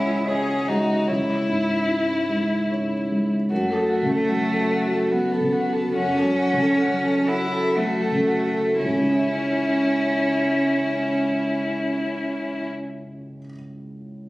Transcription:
Already playing: felt piano C#2 G#3 E4 C#5 D#5 E5 F#5, violin C#4, cello E4
0.25 violin C#4, cello G#4, felt piano D#5
0.29 felt piano C#5
0.68 felt piano G#3, violin D#4, cello F#4
1.06 felt piano C#2 C#5, violin E4, cello E4
1.49 felt piano G#2
1.89 felt piano E4
2.29 felt piano G#3
2.70 felt piano C#5
3.11 felt piano G#3
3.50 felt piano F#2, cello A3, violin F#4
3.70 violin A4
3.77 felt piano F#4
3.89 violin F#4
4.03 felt piano C#3
4.10 violin A4
4.29 felt piano F#3, violin F#4
4.52 violin A4
4.58 felt piano C#5
4.72 violin F#4
4.85 felt piano F#4
4.93 violin A4
5.12 felt piano F#3, cello B3, violin F#4
5.32 violin A4
5.41 felt piano C#3
5.52 violin F#4
5.69 felt piano F#4
5.73 violin A4
5.94 felt piano F#2, cello C#4, violin F#4
6.17 violin A4
6.24 felt piano F#3
6.39 violin F#4
6.54 felt piano C#3
6.60 violin A4
6.81 felt piano F#3, violin F#4
7.05 violin A4
7.13 felt piano C#5
7.28 cello E4, violin F#4
7.45 felt piano F#4
7.52 violin A4
7.76 felt piano F#3, cello A3, violin F#4
8.01 violin A4
8.12 felt piano C#3
8.28 violin F#4
8.46 felt piano F#4
8.53 violin A4
8.79 felt piano C#2, cello C#4, violin E4
8.87 felt piano C#3
8.94 felt piano G#3
9.01 felt piano E4
9.08 felt piano C#5
9.15 felt piano E5

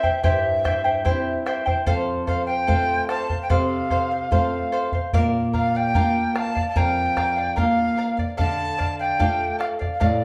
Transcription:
Already playing: quena E5
0.03 charango E4 C5 G5, bombo low
0.23 nylon-string guitar G2, charango E4 G4 C5 E5 G5, quena E5, bombo low
0.64 charango E4 C5 E5 G5, bombo rim, bombo low
0.84 charango E4 C5 G5
1.05 nylon-string guitar G3 C4 E4, charango E4 G4 C5 E5 G5, bombo low
1.46 charango E4 C5 E5 G5, bombo rim
1.66 charango E4 C5 G5, bombo low
1.86 nylon-string guitar F2, charango A4 C5 F5, bombo low
2.27 charango A4 C5 F5, quena F5, bombo low
2.46 charango C5 F5, quena G5
2.67 nylon-string guitar A3 C4 F4, charango A4 C5 F5, bombo low
3.09 charango A4 C5 F5, quena A5, bombo rim
3.29 charango C5 F5, bombo low
3.42 quena G5
3.50 nylon-string guitar C3, charango A4 C5 F5, quena F5, bombo low
3.90 charango A4 C5 F5, bombo low
4.11 charango C5 F5
4.31 nylon-string guitar A3 C4 F4, charango A4 C5 F5, quena F5, bombo low
4.72 charango A4 C5 F5
4.92 charango C5 F5, bombo low
5.13 nylon-string guitar A#2, charango A#4 D5 F5, bombo low
5.53 charango A#4 D5 F5, quena F5, bombo low
5.75 charango D5 F5, quena G5
5.95 nylon-string guitar A#3 D4 F4, charango A#4 D5 F5, bombo low
6.35 charango A#4 D5 F5, quena A5, bombo rim
6.55 charango D5 F5, bombo low
6.69 quena A5
6.76 nylon-string guitar F2, charango A#4 D5 F5, quena G5, bombo low
7.17 charango A#4 D5 F5, bombo rim, bombo low
7.36 charango D5 F5
7.56 nylon-string guitar A#3 D4 F4, charango A#4 D5 F5, quena F5, bombo low
7.97 charango A#4 D5 F5
8.17 charango D5 F5, bombo low
8.37 nylon-string guitar D3, charango A4 D5 F5, quena A5, bombo low
8.78 charango A4 D5 F5, bombo low
8.99 charango D5 F5, quena G5
9.19 nylon-string guitar A3 D4 F4, charango A4 D5 F5, bombo low
9.59 charango A4 D5 F5, quena F5, bombo rim
9.79 charango D5 F5, bombo low
9.94 quena F5
10.00 nylon-string guitar A2, charango A4 D5 F5, quena D5, bombo low

